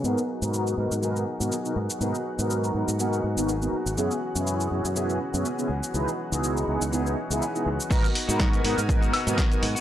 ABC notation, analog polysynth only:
X:1
M:4/4
L:1/16
Q:"Swing 16ths" 1/4=122
K:G#m
V:1 name="Analog polysynth"
[B,DFA] z2 [B,DFA]3 [B,DFA] z [B,DFA]2 z [B,DFA] z [B,DFA] z2 | [B,DFA] z2 [B,DFA]3 [B,DFA] z [B,DFA]2 z [B,DFA] z [B,DFA] z2 | [B,CEG] z2 [B,CEG]3 [B,CEG] z [B,CEG]2 z [B,CEG] z [B,CEG] z2 | [B,DEG] z2 [B,DEG]3 [B,DEG] z [B,DEG]2 z [B,DEG] z [B,DEG] z2 |
[B,DFA] z2 [B,DFA]3 [B,DFA] z [B,DFA]2 z [B,DFA] z [B,DFA] z2 |]